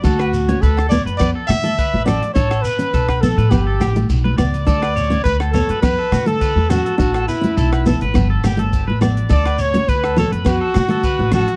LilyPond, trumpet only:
\new Staff \with { instrumentName = "Trumpet" } { \time 4/4 \key d \major \tempo 4 = 104 fis'4 a'8 d''8 d''8 e''4 d''8 | cis''8 b'4 a'8 g'4 r4 | d''4 b'8 a'8 b'8. a'8. fis'8 | fis'8 e'4. r2 |
d''8 cis''8 b'8 a'8 fis'4. fis'8 | }